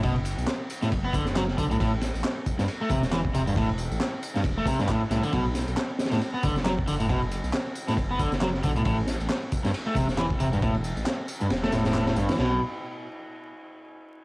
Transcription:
Already playing: detuned saw bass F#1
0.03 overdriven electric guitar B2, kick, ride, tambourine
0.16 ride
0.25 ride, tambourine
0.38 detuned saw bass B1, tambourine
0.47 snare, clap, ride, tambourine
0.70 ride, tambourine
0.82 overdriven electric guitar A2, snare, tambourine
0.92 detuned saw bass F#1, kick, ride, tambourine
1.04 overdriven electric guitar B3
1.13 detuned saw bass F#1, overdriven electric guitar D3, kick, ride, tambourine
1.25 snare, tambourine
1.36 overdriven electric guitar F#3, snare, clap, ride, tambourine
1.48 snare
1.58 detuned saw bass B1, overdriven electric guitar D3, kick, ride, tambourine
1.71 overdriven electric guitar A2, tambourine
1.80 detuned saw bass A1, overdriven electric guitar A2, kick, ride, tambourine
2.01 snare, ride, tambourine
2.14 detuned saw bass A1, ride, tambourine
2.24 snare, clap, ride, tambourine
2.46 kick, ride, tambourine
2.59 overdriven electric guitar G2, snare, tambourine
2.68 ride, tambourine
2.81 overdriven electric guitar A3
2.89 detuned saw bass E1, overdriven electric guitar C3, kick, ride, tambourine
3.03 snare, tambourine
3.12 overdriven electric guitar E3, snare, clap, ride, tambourine
3.25 kick
3.34 detuned saw bass E1, overdriven electric guitar C3, ride, tambourine
3.47 overdriven electric guitar G2, tambourine
3.56 overdriven electric guitar A2, kick, ride
3.69 ride
3.78 ride, tambourine
3.91 detuned saw bass A1, tambourine
4.00 snare, clap, ride, tambourine
4.23 ride, tambourine
4.35 overdriven electric guitar G2, snare, tambourine
4.44 detuned saw bass E1, kick, ride, tambourine
4.58 overdriven electric guitar A3
4.66 overdriven electric guitar C3, kick, ride, tambourine
4.79 overdriven electric guitar G2, snare, tambourine
4.88 overdriven electric guitar A2, kick, clap, ride, tambourine
5.10 detuned saw bass C2, overdriven electric guitar A2, snare, ride, tambourine
5.23 overdriven electric guitar D3, ride, tambourine
5.33 detuned saw bass B1, overdriven electric guitar B2, kick, ride, tambourine
5.55 snare, ride, tambourine
5.67 detuned saw bass B1, ride, tambourine
5.77 snare, clap, ride, tambourine
5.99 snare, ride, tambourine
6.05 snare, ride
6.11 overdriven electric guitar A2, snare, ride, tambourine
6.17 snare, ride
6.21 ride, tambourine
6.34 overdriven electric guitar B3
6.43 detuned saw bass F#1, overdriven electric guitar D3, kick, ride, tambourine
6.56 snare, tambourine
6.65 overdriven electric guitar F#3, snare, clap, ride, tambourine
6.79 kick
6.87 detuned saw bass F#1, overdriven electric guitar D3, ride, tambourine
7.00 overdriven electric guitar A2, tambourine
7.09 overdriven electric guitar B2, kick, ride
7.22 ride
7.32 ride, tambourine
7.44 detuned saw bass B1, tambourine
7.53 snare, clap, ride, tambourine
7.75 ride, tambourine
7.88 overdriven electric guitar A2, snare, tambourine
7.97 detuned saw bass F#1, kick, ride, tambourine
8.11 overdriven electric guitar B3
8.19 detuned saw bass F#1, overdriven electric guitar D3, kick, ride, tambourine
8.32 snare, tambourine
8.41 overdriven electric guitar F#3, snare, clap, ride, tambourine
8.54 snare
8.63 detuned saw bass B1, overdriven electric guitar D3, kick, ride, tambourine
8.76 overdriven electric guitar A2, tambourine
8.85 detuned saw bass A1, overdriven electric guitar A2, kick, ride, tambourine
9.07 snare, ride, tambourine
9.20 detuned saw bass A1, ride, tambourine
9.29 snare, clap, ride, tambourine
9.52 kick, ride, tambourine
9.65 overdriven electric guitar G2, snare, tambourine
9.74 ride, tambourine
9.87 overdriven electric guitar A3
9.95 detuned saw bass E1, overdriven electric guitar C3, kick, ride, tambourine
10.09 snare, tambourine
10.18 overdriven electric guitar E3, snare, clap, ride
10.30 kick
10.40 detuned saw bass E1, overdriven electric guitar C3, ride, tambourine
10.53 overdriven electric guitar G2, tambourine
10.62 overdriven electric guitar A2, kick, ride, tambourine
10.74 ride
10.84 ride, tambourine
10.97 detuned saw bass A1, tambourine
11.06 snare, clap, ride, tambourine
11.28 ride, tambourine
11.41 overdriven electric guitar G2, tambourine
11.50 detuned saw bass E1, snare, ride, tambourine
11.63 overdriven electric guitar A3, snare, ride
11.72 detuned saw bass E1, overdriven electric guitar A2, snare, ride, tambourine
11.85 overdriven electric guitar A2, snare, ride, tambourine
11.94 detuned saw bass E1, overdriven electric guitar A2, snare, clap, ride, tambourine
12.07 overdriven electric guitar A2, snare, ride
12.16 detuned saw bass A1, overdriven electric guitar G2, ride, tambourine
12.29 overdriven electric guitar E3, snare, ride, tambourine
12.39 detuned saw bass B1, overdriven electric guitar B2, snare, crash

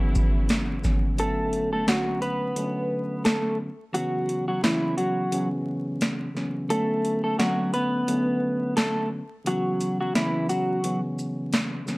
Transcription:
Already playing: string section F#2 F#3 B3 E4, tine electric piano C#3 E3 F#3 B3 C#4
0.15 kick, shaker
0.49 snare, closed hi-hat
0.82 tine electric piano C#3 E3 F#3 B3 C#4, kick, snare, shaker
1.17 tine electric piano D3 F#3 A3 B3 C#4, clean electric guitar A3 A4, closed hi-hat
1.53 closed hi-hat
1.73 clean electric guitar A3 A4
1.86 tine electric piano D3 F#3 A3 B3 C#4, clean electric guitar F#3 F#4, snare, closed hi-hat
2.22 clean electric guitar B3 B4, closed hi-hat
2.56 tine electric piano D3 F#3 A3 B3 C#4, closed hi-hat
3.25 clean electric guitar A3 A4, snare, closed hi-hat
3.93 tine electric piano C#3 E3 F#3 B3 C#4, clean electric guitar F#3 F#4, closed hi-hat
4.29 closed hi-hat
4.48 clean electric guitar F#3 F#4
4.62 tine electric piano C#3 E3 F#3 B3 C#4, clean electric guitar E3 E4, snare, closed hi-hat
4.97 clean electric guitar F#3 F#4, closed hi-hat
5.31 tine electric piano C#3 E3 F#3 B3 C#4, closed hi-hat
6.01 snare, closed hi-hat
6.34 tine electric piano C#3 E3 F#3 B3 C#4, snare
6.69 tine electric piano D3 F#3 A3 B3 C#4, clean electric guitar A3 A4, closed hi-hat
7.05 closed hi-hat
7.24 clean electric guitar A3 A4
7.38 tine electric piano D3 F#3 A3 B3 C#4, clean electric guitar F#3 F#4, snare, closed hi-hat
7.74 clean electric guitar B3 B4, closed hi-hat
8.07 tine electric piano D3 F#3 A3 B3 C#4, closed hi-hat
8.77 clean electric guitar A3 A4, snare, closed hi-hat
9.44 tine electric piano C#3 E3 F#3 B3 C#4, clean electric guitar F#3 F#4, closed hi-hat
9.81 closed hi-hat, shaker
10.01 clean electric guitar F#3 F#4
10.14 tine electric piano C#3 E3 F#3 B3 C#4, clean electric guitar E3 E4, snare, closed hi-hat
10.49 clean electric guitar F#3 F#4, closed hi-hat, shaker
10.83 tine electric piano C#3 E3 F#3 B3 C#4, closed hi-hat
11.19 shaker
11.53 snare, closed hi-hat
11.86 tine electric piano C#3 E3 F#3 B3 C#4, snare, shaker

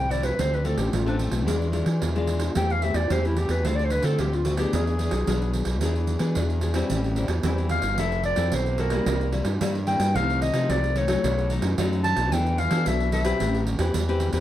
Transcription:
Already playing: fingered electric bass C2, nylon-string guitar A2, clarinet G5
0.10 nylon-string guitar F3 C4 E4, clarinet D5, pandeiro
0.23 clarinet B4, pandeiro
0.39 fingered electric bass D2, nylon-string guitar D3 A3 C4 F4, clarinet C5, pandeiro
0.54 clarinet B4, pandeiro
0.64 nylon-string guitar A3 C4 F4, clarinet A4, pandeiro
0.77 fingered electric bass A1, clarinet G4, pandeiro
0.93 fingered electric bass A1, nylon-string guitar A2, clarinet F4, pandeiro
1.06 nylon-string guitar A3 C4 F4, clarinet D4, pandeiro
1.19 pandeiro
1.32 fingered electric bass B1, pandeiro
1.47 fingered electric bass E2, nylon-string guitar E3 G#3 D4 F4, pandeiro
1.62 pandeiro
1.72 nylon-string guitar G#3 D4 F4, pandeiro
1.86 fingered electric bass E3, pandeiro
2.01 fingered electric bass E2, nylon-string guitar B2, pandeiro
2.15 nylon-string guitar G#3 D4 F4, pandeiro
2.27 pandeiro
2.40 pandeiro
2.55 fingered electric bass E2, nylon-string guitar E3 A3 C4 G4, clarinet G5, pandeiro
2.70 clarinet F5, pandeiro
2.82 nylon-string guitar A3 C4 G4, clarinet E5, pandeiro
2.94 fingered electric bass E2, clarinet D5, pandeiro
3.10 fingered electric bass E2, nylon-string guitar E3 A3 C4 G4, clarinet C5, pandeiro
3.25 clarinet E4, pandeiro
3.37 clarinet G4, pandeiro
3.49 fingered electric bass E2, clarinet B4, pandeiro
3.65 fingered electric bass D2, nylon-string guitar D3 A3 C4 F4, clarinet C5, pandeiro
3.75 clarinet D5, pandeiro
3.84 clarinet C5
3.90 clarinet B4, pandeiro
4.03 fingered electric bass D3, nylon-string guitar A3 C4 F4, clarinet A4, pandeiro
4.18 fingered electric bass D2, nylon-string guitar A2, clarinet G4, pandeiro
4.33 clarinet F4, pandeiro
4.45 nylon-string guitar A3 C4 F4, clarinet F#4, pandeiro
4.57 nylon-string guitar B3 D4 G#4, clarinet G4, pandeiro
4.73 fingered electric bass E2, nylon-string guitar E3, clarinet G#4, pandeiro
4.87 pandeiro
4.99 nylon-string guitar B3 D4 G#4, pandeiro
5.11 fingered electric bass B1, pandeiro
5.27 fingered electric bass B1, nylon-string guitar B2 B3 D4 G#4, pandeiro
5.42 pandeiro
5.54 pandeiro
5.65 fingered electric bass B1, pandeiro
5.81 fingered electric bass E2, nylon-string guitar E3 B3 D4 G#4, pandeiro
5.96 pandeiro
6.07 pandeiro
6.19 fingered electric bass E3, nylon-string guitar B3 D4 G#4, pandeiro
6.35 fingered electric bass E2, nylon-string guitar B2, pandeiro
6.50 pandeiro
6.61 nylon-string guitar B3 D4 G#4, pandeiro
6.74 nylon-string guitar G3 C4 E4, pandeiro
6.90 fingered electric bass A1, nylon-string guitar A2, pandeiro
7.04 pandeiro
7.16 nylon-string guitar G3 C4 E4, pandeiro
7.28 fingered electric bass E2, pandeiro
7.43 fingered electric bass E2, nylon-string guitar E3 G3 C4 E4, pandeiro
7.58 pandeiro
7.69 clarinet F5, pandeiro
7.82 fingered electric bass G1, pandeiro
7.98 fingered electric bass F1, nylon-string guitar F3 C4 E4 A4, clarinet E5, pandeiro
8.12 pandeiro
8.23 clarinet D5, pandeiro
8.36 fingered electric bass F2, nylon-string guitar C4 E4 A4, pandeiro
8.52 fingered electric bass B1, clarinet C5, pandeiro
8.66 pandeiro
8.78 nylon-string guitar C4 E4 A4, clarinet A#4, pandeiro
8.90 nylon-string guitar G3 A#3 E4, pandeiro
9.06 fingered electric bass C2, nylon-string guitar C3, pandeiro
9.21 pandeiro
9.32 nylon-string guitar G3 A#3 E4, pandeiro
9.45 fingered electric bass G2, pandeiro
9.61 nylon-string guitar G2 G3 A#3 E4, fingered electric bass G2, pandeiro
9.75 pandeiro
9.87 nylon-string guitar G3 A#3 E4, clarinet G5, pandeiro
10.00 fingered electric bass G2, pandeiro
10.15 fingered electric bass C2, nylon-string guitar C3 F3 A3 D#4, clarinet F5, pandeiro
10.30 pandeiro
10.42 clarinet D#5, pandeiro
10.53 fingered electric bass C3, nylon-string guitar F3 A3 D#4, pandeiro
10.69 fingered electric bass C2, nylon-string guitar C3, clarinet D5, pandeiro
10.84 pandeiro
10.96 nylon-string guitar F3 A3 D#4, clarinet C#5, pandeiro
11.08 nylon-string guitar F#3 A3 D#4, pandeiro
11.24 fingered electric bass B1, nylon-string guitar B2, pandeiro
11.38 pandeiro
11.50 nylon-string guitar F#3 A3 D#4, pandeiro
11.62 fingered electric bass F#2, pandeiro
11.78 fingered electric bass F#2, nylon-string guitar F#2 F#3 A3 D#4, pandeiro
11.93 pandeiro
12.04 clarinet A5, pandeiro
12.17 fingered electric bass B1, pandeiro
12.32 fingered electric bass E2, nylon-string guitar E3 B3 D4 A4, clarinet G5, pandeiro
12.46 pandeiro
12.58 clarinet F5, pandeiro
12.71 fingered electric bass E3, nylon-string guitar B3 D4 A4, pandeiro
12.86 fingered electric bass B1, nylon-string guitar B2, clarinet E5, pandeiro
13.00 pandeiro
13.12 nylon-string guitar B3 D4 A4, clarinet E5, pandeiro
13.25 nylon-string guitar C4 G4 B4, pandeiro
13.40 fingered electric bass A1, nylon-string guitar A3, pandeiro
13.54 pandeiro
13.67 pandeiro
13.79 fingered electric bass E2, nylon-string guitar C4 G4 B4, pandeiro
13.94 fingered electric bass E2, nylon-string guitar E3, pandeiro
14.09 nylon-string guitar C4 G4 B4, pandeiro
14.20 pandeiro
14.33 fingered electric bass E2, nylon-string guitar C4 G4 B4, pandeiro

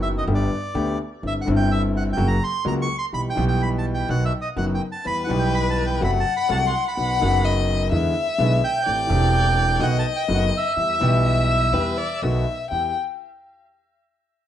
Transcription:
Already playing: upright bass F#1, grand piano F#2 D#3 F#3 B3 F#4
0.02 bandoneon E5
0.18 bandoneon D#5
0.27 upright bass G1, grand piano G1 G2 D3 A3 B3 G4
0.35 bandoneon D5
0.74 upright bass D2, grand piano D2 D3 A3 B3 G4
1.22 grand piano G1 G2 D3 G3 C4 E4, upright bass G1
1.27 bandoneon E5
1.41 grand piano D3, bandoneon F#5
1.46 grand piano G1 G2 G3 C4 E4, upright bass G1
1.56 bandoneon G5
1.72 bandoneon E5
1.97 bandoneon F#5
2.13 grand piano C#3 F#3, bandoneon G5
2.17 upright bass F#1, grand piano F#2 A#3 F#4
2.28 bandoneon A#5
2.44 bandoneon C6
2.65 grand piano C#2 C#3 F#3 A#3 F#4, upright bass C#2, bandoneon A#5
2.82 bandoneon C#6
2.99 bandoneon C6
3.13 upright bass B1, grand piano B1 B2 E3 G3 B3 G4, bandoneon B5
3.30 bandoneon G5
3.35 grand piano B1 B2 E3 G3 B3 G4, upright bass B1
3.48 bandoneon G5
3.62 bandoneon B5
3.78 bandoneon A5
3.94 bandoneon G5
4.09 upright bass B1, grand piano B1 B2 D#3 F#3 B3 F#4, bandoneon F#5
4.25 bandoneon E5
4.41 bandoneon D#5
4.56 upright bass F#1, grand piano F#1 F#2 D#3 F#3 B3 F#4, bandoneon F#5
4.75 bandoneon G5
4.92 bandoneon A5
5.05 grand piano E2 E3 G3 B3 G4, upright bass E2, violin B4, bandoneon B5
5.24 grand piano E3 G3, bandoneon F#5
5.29 grand piano B1 B2 B3 G4, upright bass B1
5.39 bandoneon G5
5.54 bandoneon B5
5.70 bandoneon A5
5.87 bandoneon G5
6.00 upright bass F#1, grand piano F#2 C3 F#3 A3 F#4, violin F#5, bandoneon B5
6.20 bandoneon A5
6.37 bandoneon B5
6.49 grand piano C2 C3 F#3 A3 F#4, upright bass C2, bandoneon A5
6.67 bandoneon C6
6.88 bandoneon B5
6.97 grand piano B1 B2 D#3 F#3 B3 F#4, upright bass B1, violin F#5
7.19 grand piano F#1 F#2 D#3 F#3 B3, upright bass F#1
7.23 grand piano F#4
7.45 violin D#5
7.91 upright bass E2, grand piano E2 D3 E3 G#3 B3 E4, violin E5
8.38 grand piano B1 B2 D3 G#3 B3 E4, upright bass B1
8.64 bandoneon G5
8.86 grand piano A1 A2 E3 A3 C4 G4, upright bass A1, violin D5
9.07 grand piano E1 E2 E3 A3 C4, upright bass E1
9.11 grand piano G4
9.79 grand piano B1 B2 D#3 A3 B3 F#4, upright bass B1, violin D#5, bandoneon F#5
9.99 bandoneon A5
10.17 bandoneon G5
10.28 grand piano F#1 F#2 D#3 A3 B3 F#4, upright bass F#1
10.34 bandoneon F#5
10.57 bandoneon E5
10.76 upright bass E2, grand piano E2 E3 G3 B3 G4, violin E5
10.99 grand piano B1 B2 E3 G3 B3 G4, upright bass B1
11.26 violin E5
11.72 upright bass E2, grand piano E2 E3 G3 B3 G4, violin B4
11.97 violin D5
12.22 upright bass B1, grand piano B1 B2 D#3 A3 B3 F#4, violin E5
12.71 grand piano E2 B3 E4 G4, upright bass E2, violin G5

